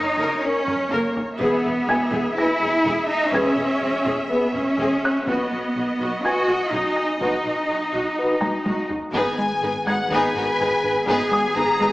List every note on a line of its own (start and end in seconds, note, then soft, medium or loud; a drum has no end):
0.00 0.44 D#4 medium
0.00 1.37 C#5 medium
0.00 1.43 E5 soft
0.00 1.12 A#5 soft
0.00 1.12 A#6 soft
0.19 0.27 F#1 medium
0.19 0.42 A#4 medium
0.43 0.92 C#4 medium
0.43 0.61 A#4 medium
0.43 0.61 C#5 medium
0.67 0.75 F#1 medium
0.67 0.75 A#4 soft
0.67 taiko low-mid medium
0.91 1.00 F#1 medium
0.91 1.16 A#3 medium
0.91 1.14 A#4 medium
0.91 taiko low-mid medium
1.16 taiko low medium
1.39 1.48 E1 medium
1.39 2.33 B3 medium
1.39 1.57 G#4 medium
1.39 1.63 G#4 medium
1.39 1.57 B4 medium
1.39 5.27 E5 medium
1.39 taiko medium
1.64 1.72 E1 medium
1.64 1.73 G#4 soft
1.88 1.96 E1 medium
1.88 1.98 G#4 medium
1.88 3.30 G#5 soft
1.88 3.30 G#6 medium
2.12 2.20 E1 medium
2.12 2.35 G#4 medium
2.36 3.09 E4 medium
2.36 2.53 G#4 medium
2.36 2.53 B4 medium
2.36 3.79 A#6 soft
2.61 2.69 E1 medium
2.61 2.69 G#4 medium
2.85 2.93 E1 medium
2.85 3.08 G#4 medium
2.85 taiko medium
3.09 3.33 D#4 medium
3.33 3.41 E1 medium
3.33 4.30 C#4 medium
3.33 3.50 G#4 medium
3.33 3.56 G#4 medium
3.33 3.50 B4 medium
3.33 4.75 G#6 medium
3.33 taiko medium
3.57 3.65 E1 medium
3.57 3.66 G#4 soft
3.82 3.90 E1 soft
3.82 3.91 G#4 soft
4.06 4.14 E1 medium
4.06 4.29 G#4 medium
4.29 4.54 B3 medium
4.29 4.47 G#4 medium
4.29 4.47 B4 medium
4.54 4.62 E1 soft
4.54 5.27 C#4 medium
4.54 4.63 G#4 medium
4.78 4.86 E1 medium
4.78 5.02 G#4 medium
4.78 taiko medium
5.05 6.45 F#6 medium
5.27 5.35 B1 medium
5.27 6.24 B3 medium
5.27 5.44 F#4 medium
5.27 5.50 F#4 medium
5.27 5.44 B4 soft
5.27 8.95 D#5 medium
5.27 taiko medium
5.51 5.59 B1 soft
5.51 5.60 F#4 soft
5.75 5.83 B1 soft
5.75 5.84 F#4 soft
6.00 6.08 B1 medium
6.00 6.23 F#4 medium
6.24 6.72 F#4 medium
6.24 6.42 F#4 medium
6.24 6.41 B4 medium
6.24 7.66 G#5 soft
6.24 7.66 G#6 soft
6.47 6.55 B1 soft
6.47 6.56 F#4 soft
6.72 6.80 B1 medium
6.72 7.19 D#4 medium
6.72 6.95 F#4 medium
6.72 taiko medium
6.96 8.38 A#6 soft
7.20 7.28 B1 medium
7.20 8.87 D#4 medium
7.20 7.38 F#4 soft
7.20 7.43 F#4 medium
7.20 7.38 B4 soft
7.20 taiko medium
7.44 7.52 B1 soft
7.44 7.54 F#4 soft
7.69 7.77 B1 soft
7.69 7.77 F#4 soft
7.93 8.01 B1 medium
7.93 8.16 F#4 soft
8.18 8.35 F#4 soft
8.18 8.35 B4 soft
8.41 8.49 B1 soft
8.41 8.51 F#4 soft
8.41 9.10 A#5 soft
8.41 9.10 A#6 soft
8.41 taiko high medium
8.65 8.73 B1 medium
8.65 8.89 F#4 soft
8.65 taiko high medium
8.90 taiko low medium
9.13 9.21 G#1 medium
9.13 11.92 G#1 medium
9.13 9.29 G#2 medium
9.13 11.92 B3 medium
9.13 9.37 B3 medium
9.13 9.37 D#4 medium
9.13 11.92 G#4 medium
9.13 9.37 G#4 medium
9.13 9.37 B4 medium
9.13 9.83 G#5 medium
9.13 taiko medium
9.38 9.53 G#3 medium
9.62 9.70 G#1 soft
9.62 9.78 G#2 medium
9.62 9.71 B3 soft
9.62 9.72 D#4 soft
9.62 9.70 G#4 soft
9.62 9.70 B4 soft
9.86 9.94 G#1 soft
9.86 10.01 G#3 medium
9.86 9.95 B3 soft
9.86 9.95 D#4 soft
9.86 9.96 G#4 soft
9.86 10.11 F#5 medium
9.86 11.28 G#6 soft
10.10 10.18 G#1 medium
10.10 10.26 G#2 medium
10.10 10.34 B3 medium
10.10 10.34 D#4 medium
10.10 10.34 G#4 medium
10.10 11.04 B4 medium
10.10 10.34 B4 medium
10.10 11.06 G#5 medium
10.10 taiko medium
10.34 10.42 G#1 soft
10.34 10.51 G#2 medium
10.34 10.44 B3 soft
10.34 10.43 D#4 soft
10.34 10.44 F#4 medium
10.34 10.44 A#4 soft
10.59 10.67 G#1 soft
10.59 10.75 G#2 medium
10.59 10.67 B3 soft
10.59 10.67 D#4 soft
10.59 10.69 G#4 soft
10.59 10.68 B4 medium
10.84 10.98 G#2 medium
11.07 11.15 G#1 medium
11.07 11.22 G#2 medium
11.07 11.30 B3 medium
11.07 11.30 D#4 medium
11.07 11.92 G#4 medium
11.07 11.31 G#4 medium
11.07 11.31 B4 medium
11.07 11.55 G#5 medium
11.07 taiko medium
11.31 11.46 G#3 medium
11.31 11.92 D#6 soft
11.56 11.64 G#1 medium
11.56 11.70 G#2 medium
11.56 11.64 B3 medium
11.56 11.64 D#4 soft
11.56 11.65 G#4 medium
11.56 11.65 B4 medium
11.56 11.92 A#5 medium
11.80 11.88 G#1 soft
11.80 11.92 G#3 medium
11.80 11.89 B3 medium
11.80 11.89 D#4 soft
11.80 11.90 D#4 soft
11.80 11.90 G#4 medium